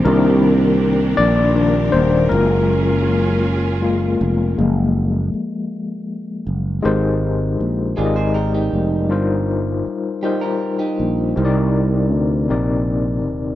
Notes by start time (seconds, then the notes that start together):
Already playing: D#3 C4 G4
0.03 C2 D#3 A#3 D4 A#4
1.17 A#1 D5
1.55 D#3 A#3 D4
1.92 D#1 C5
2.29 F#1 F#3 G#3 A#3 C#4 F4 G#4 A#4
3.82 G#3 A#3 F4
4.21 F1
4.57 F#1 F3 G#3 A#3
5.34 muted fretless electric bass stroke
6.47 F#1
6.83 G#1 G#3 D#4 G4 A#4 C5
7.60 A#1
7.96 G#1 G#3 D#4 F4 G4 G#4 A#4 D5
8.06 D#5
8.16 G#4 C5
8.34 G4 A#4
8.54 D#4 G4
8.73 F1
9.09 G1 G3 D#4 F4 A#4 C5
9.86 muted fretless electric bass stroke
10.22 G3 D#4 F4 G4 A#4 C5
10.41 G4 A#4
10.79 D#4 G4
11.00 A#1
11.36 C2 C3 C4 D#4 A#4 C5
11.45 D5
12.13 D2
12.48 A#1 C3 C4 D#4 A#4 D5
13.26 D#1